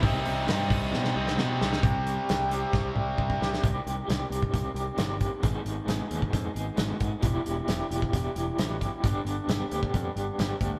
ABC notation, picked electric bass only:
X:1
M:4/4
L:1/8
Q:1/4=133
K:Cm
V:1 name="Picked electric bass" clef=bass
C,, C,, G,, C,, =B,, C,, B,, C,, | C,,2 C,,2 C,, C,, C,, C,, | C,, C,, C,, C,, C,, C,, G,,,2 | A,,, A,,, A,,, E,, F,, A,,, A,,, A,, |
=E,,, E,,, E,,, E,,, E,,, E,,, =A,,,2 | G,,, G,,, G,,, D,, F,, G,,, G,,, D,, |]